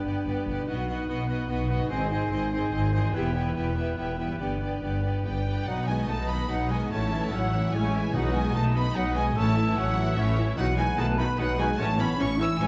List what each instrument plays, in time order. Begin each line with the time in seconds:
Already playing: harp G2 B3 D4 G4, french horn section B3 D4, clarinet D4, oboe B4, flute G5
0.04 double bass section G1, cello section G2, viola section B3, violin section G4 D5
0.26 double bass section G1, cello section G2, viola section B3, violin section G4 D5
0.47 double bass section G1, cello section G2, harp B2, viola section B3, violin section G4 D5
0.54 harp B3
0.59 harp D#4
0.63 cello section B2, harp F#4
0.67 double bass section B1, viola section B3, french horn section B3 D#4, clarinet D#4, violin section F#4 D#5, oboe B4, flute F#5
0.88 viola section B3, clarinet D#4, violin section F#4 D#5, oboe B4, flute F#5
1.07 double bass section B1, cello section B2, viola section B3, clarinet D#4, violin section F#4 D#5, oboe B4, flute F#5
1.28 viola section B3, clarinet D#4, violin section F#4 D#5, oboe B4, flute F#5
1.49 double bass section B1, cello section B2, viola section B3, clarinet D#4, violin section F#4 D#5, oboe B4, flute F#5
1.68 viola section B3, clarinet D#4, violin section F#4 D#5, oboe B4, flute F#5
1.73 harp G#2
1.77 harp C4
1.81 harp D#4
1.86 double bass section G#1, cello section G#2, viola section C4, harp G#4, oboe C5, violin section D#5
1.90 french horn section C4 D#4, clarinet D#4, violin section G#4, flute G#5
2.11 viola section C4, clarinet D#4, violin section G#4 D#5, oboe C5, flute G#5
2.31 double bass section G#1, cello section G#2, viola section C4, clarinet D#4, violin section G#4 D#5, oboe C5, flute G#5
2.52 viola section C4, clarinet D#4, violin section G#4 D#5, oboe C5, flute G#5
2.71 double bass section G#1, cello section G#2, viola section C4, clarinet D#4, violin section G#4 D#5, oboe C5, flute G#5
2.93 harp E2, viola section C4, clarinet D#4, violin section G#4 D#5, oboe C5, flute G#5
3.00 harp B3
3.05 harp E4
3.10 cello section E2, viola section B3, harp G4, oboe B4, violin section E5
3.14 double bass section E1, french horn section B3 G4, clarinet E4, violin section G4, flute G5
3.33 viola section B3, clarinet E4, violin section G4 E5, oboe B4, flute G5
3.54 double bass section E1, cello section E2, viola section B3, clarinet E4, violin section G4 E5, oboe B4, flute G5
3.75 viola section B3, clarinet E4, violin section G4 E5, oboe B4, flute G5
3.95 double bass section E1, cello section E2, viola section B3, clarinet E4, violin section G4 E5, oboe B4, flute G5
4.17 viola section B3, clarinet E4, violin section G4 E5, oboe B4, flute G5
4.22 harp G2
4.26 harp B3
4.31 harp D4
4.35 cello section G2, viola section B3, harp G4, oboe B4, violin section D5, flute G5
4.39 double bass section G1, french horn section B3 G4, clarinet D4, violin section G4
4.60 viola section B3, clarinet D4, violin section G4 D5, oboe B4, flute G5
4.81 double bass section G1, cello section G2, viola section B3, clarinet D4, violin section G4 D5, oboe B4, flute G5
5.02 viola section B3, clarinet D4, violin section G4 D5, oboe B4, flute G5
5.23 double bass section G1, cello section G2, french horn section G3, viola section B3, clarinet D4, violin section G4 D5 G5, oboe B4, flute G5
5.45 viola section B3, clarinet D4, violin section G4 D5, oboe B4
5.66 double bass section B1, cello section B2, harp B2, viola section F#3 D#4, french horn section F#3, violin section D#4 B4 F#5, flute F#5
5.87 viola section D#3 B3, harp F#3, french horn section G#3, violin section F#4 D#5 G#5, flute G#5
6.08 double bass section B1, cello section B2, viola section F#3 D#4, french horn section A3, violin section D#4 B4 A5, harp D#4, oboe D#5, flute A5
6.27 viola section D#3 B3, french horn section B3, violin section F#4 D#5 B5, harp B4, flute B5
6.49 double bass section B1, cello section B2, french horn section F#3, viola section F#3 D#4, violin section D#4 B4 F#5, harp F#4, flute F#5
6.70 viola section D#3 B3, french horn section G#3, harp D#4, violin section F#4 D#5 G#5, flute G#5
6.90 double bass section A1, cello section A2, harp A2, french horn section A3, viola section A3 C#4, violin section E4 C#5 A5, oboe C#5, flute A5
7.11 viola section E3 E4, harp E3, violin section C#4 E5
7.31 double bass section A1, cello section A2, french horn section F#3, viola section A3 C#4, violin section E4 C#5 F#5, harp E4, oboe E5, flute F#5
7.53 viola section E3 E4, violin section C#4 E5, harp C#5
7.73 double bass section A1, cello section A2, french horn section G#3, viola section A3 C#4, harp E4, violin section E4 C#5 G#5, oboe C#5, flute G#5
7.94 viola section E3 E4, violin section C#4 E5, harp C#4
8.14 double bass section B1, timpani B2, cello section B2, harp B2, viola section F#3 D#4, french horn section F#3, violin section D#4 B4 F#5, oboe D#5, flute F#5
8.34 viola section D#3 B3, harp F#3, french horn section G#3, violin section F#4 D#5 G#5, flute G#5
8.53 double bass section B1, cello section B2, viola section F#3 D#4, french horn section A3, violin section D#4 B4 A5, harp D#4, flute A5
8.74 viola section D#3 B3, french horn section B3, violin section F#4 D#5 B5, harp B4, flute B5
8.94 double bass section B1, cello section B2, french horn section F#3, viola section F#3 D#4, violin section D#4 B4 F#5, harp D#5, oboe D#5, flute F#5
9.14 viola section D#3 B3, french horn section G#3, harp D#4, violin section F#4 D#5 G#5, flute G#5
9.35 double bass section A1, cello section A2, harp A2, viola section A3 C#4, french horn section A3, violin section E4 C#5 A5, oboe E5, flute A5
9.56 viola section E3 E4, harp E3, violin section C#4 E5
9.75 double bass section A1, cello section A2, french horn section F#3, viola section A3 C#4, violin section E4 C#5 F#5, harp E4, flute F#5
9.96 viola section E3 E4, violin section C#4 E5, harp C#5
10.16 double bass section A1, cello section A2, french horn section E3, viola section A3 C#4, violin section E4 C#5 E5, harp E4, oboe C#5, flute E5
10.37 viola section E3 E4, harp C#4, violin section C#4 E5
10.56 double bass section B1, cello section B2, timpani B2, harp B2, viola section D#3 D#4, french horn section F#3, violin section F#4 B4 F#5, oboe B4, flute F#5
10.76 viola section D#3 D#4, harp F#3, french horn section G#3, violin section F#4 B4 G#5, flute G#5
10.97 double bass section B1, cello section B2, viola section D#3 D#4, french horn section A3, harp D#4, violin section F#4 B4 A5, flute A5
11.17 viola section D#3 D#4, french horn section B3, violin section F#4 B4 B5, harp B4, flute B5
11.37 double bass section B1, cello section B2, viola section D#3 D#4, french horn section F#3, violin section F#4 B4 F#5, harp D#5, flute F#5
11.58 viola section D#3 D#4, french horn section G#3, harp D#4, violin section F#4 B4 G#5, flute G#5
11.78 double bass section A1, cello section A2, harp A2, viola section E3 C#4, french horn section A3, violin section C#4 C#5 A5, oboe C#5, flute A5
11.97 viola section E3 C#4, harp E3, french horn section B3, violin section C#4 C#5 B5, flute B5
12.18 double bass section A1, cello section A2, viola section E3 C#4, french horn section C#4, violin section C#4 C#5 C#6, harp E4, flute C#6
12.39 viola section E3 C#4, violin section C#4 C#5, french horn section E4, harp C#5, flute E6
12.43 violin section E6
12.60 double bass section A1, cello section A2, viola section E3 C#4, french horn section G#3, violin section C#4 C#5 G#5, harp E4, oboe E5, flute G#5